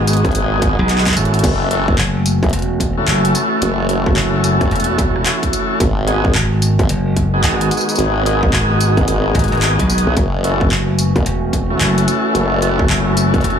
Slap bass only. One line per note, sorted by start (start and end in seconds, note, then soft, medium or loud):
0.00 0.22 G#1 loud
0.79 1.15 B1 medium
1.16 1.42 G#1 loud
1.98 2.40 F#1 loud
2.53 3.06 E1 loud
3.07 3.33 F#1 loud
4.16 4.58 F#1 loud
4.71 5.24 E1 loud
6.35 6.77 G#1 loud
6.89 7.42 F#1 medium
7.44 7.70 G#1 loud
8.53 8.95 G#1 loud
9.35 9.49 G#1 loud
9.52 9.76 G#1 medium
9.79 10.04 B1 loud
10.71 11.13 F#1 loud
11.26 11.79 E1 loud
11.80 12.06 F#1 loud
12.89 13.31 F#1 loud
13.44 13.59 E1 loud